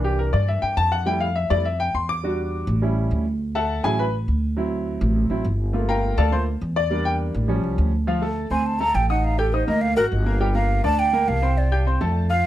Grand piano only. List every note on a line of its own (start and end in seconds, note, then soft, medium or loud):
0.00 1.02 E3 medium
0.00 1.03 A#3 soft
0.00 1.03 D4 medium
0.04 0.19 G4 medium
0.19 0.33 A#4 medium
0.33 0.47 D5 medium
0.48 0.62 E5 medium
0.62 0.77 G5 loud
0.77 0.91 A5 loud
0.92 1.06 F#5 medium
1.06 1.26 G3 medium
1.06 1.26 A3 medium
1.06 1.26 E4 medium
1.06 1.21 G5 medium
1.21 1.35 F5 medium
1.36 1.50 E5 medium
1.50 1.63 G3 medium
1.50 1.63 A3 soft
1.50 1.64 E4 medium
1.50 1.65 D5 loud
1.65 1.79 E5 medium
1.80 1.94 G5 loud
1.95 2.09 C6 medium
2.09 2.78 D6 loud
2.23 2.79 G3 soft
2.23 2.79 D4 soft
2.23 2.80 F#4 medium
2.82 3.24 G3 medium
2.82 3.24 C#4 soft
2.82 3.24 E4 medium
3.55 3.82 A4 medium
3.55 3.82 E5 medium
3.55 3.82 F#5 medium
3.55 3.82 A5 medium
3.83 4.03 F#3 medium
3.83 4.03 C#4 soft
3.83 4.04 E4 medium
3.83 3.98 G#4 medium
3.83 3.98 G#5 loud
3.99 4.13 B4 medium
3.99 4.13 B5 medium
4.57 5.28 F#3 medium
4.57 5.29 C4 soft
4.57 5.29 E4 medium
5.30 5.43 F#3 soft
5.30 5.43 C4 soft
5.30 5.44 E4 medium
5.73 6.30 A3 medium
5.73 6.31 A#3 medium
5.73 6.31 F4 medium
5.89 6.16 A#4 medium
5.89 6.16 F5 medium
5.89 6.16 G5 medium
5.89 6.16 A#5 medium
6.18 6.32 A4 medium
6.18 6.32 D5 medium
6.18 6.32 F5 medium
6.18 6.32 A5 loud
6.31 6.45 A3 soft
6.31 6.45 A#3 soft
6.31 6.45 F4 medium
6.31 6.41 C5 medium
6.31 6.41 C6 medium
6.76 7.03 D5 medium
6.90 7.46 G3 medium
6.90 7.46 A#3 soft
6.90 7.46 D4 medium
7.05 7.14 G5 loud
7.48 7.90 F3 medium
7.48 7.90 G3 medium
7.48 7.91 C#4 medium
8.07 8.19 F3 medium
8.07 8.19 F4 medium
8.07 8.20 F5 medium
8.22 8.46 A3 medium
8.22 8.46 A4 medium
8.22 8.46 A5 medium
8.51 8.75 C4 medium
8.51 8.75 C5 medium
8.51 8.75 C6 medium
8.80 9.04 A3 medium
8.80 9.04 A4 medium
8.80 9.05 A5 medium
9.10 9.33 D#4 medium
9.10 9.34 D#5 medium
9.10 9.34 D#6 medium
9.38 9.50 G4 medium
9.38 9.51 G5 medium
9.38 9.51 G6 medium
9.53 9.65 D#4 medium
9.53 9.65 D#5 medium
9.53 9.66 D#6 medium
9.67 9.91 A#3 medium
9.67 9.92 A#4 medium
9.67 9.92 A#5 medium
9.97 10.21 F#4 medium
9.97 10.21 F#5 medium
9.97 10.21 F#6 medium
10.26 10.38 A#3 medium
10.26 10.38 A#4 medium
10.26 10.38 A#5 medium
10.40 10.52 G3 medium
10.40 10.53 G4 medium
10.40 10.53 G5 medium
10.55 10.79 A#3 medium
10.55 10.79 A#4 medium
10.55 10.79 A#5 medium
10.84 11.08 D4 medium
10.84 11.08 D5 medium
10.84 11.08 D6 medium
11.13 11.37 A#3 medium
11.13 11.37 A#4 medium
11.13 11.38 A#5 medium
11.42 11.66 C4 medium
11.42 11.67 C5 medium
11.42 11.67 C6 medium
11.72 11.84 G4 medium
11.72 11.84 G5 medium
11.72 11.84 G6 medium
11.86 11.98 C4 medium
11.86 11.99 C5 medium
11.86 11.99 C6 medium
12.01 12.25 A3 medium
12.01 12.25 A4 medium
12.01 12.25 A5 medium
12.30 12.47 F4 medium
12.30 12.47 F5 medium
12.30 12.47 F6 medium